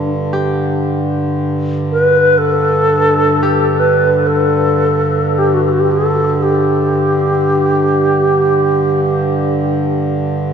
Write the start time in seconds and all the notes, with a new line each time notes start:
Already playing: G2 D3 D4
0.33 G4
1.92 B4
2.38 A4
3.43 G4
3.79 B4
4.27 A4
5.38 G4
5.54 F#4
5.65 F#4 G4
5.80 G4
5.92 A4
6.43 G4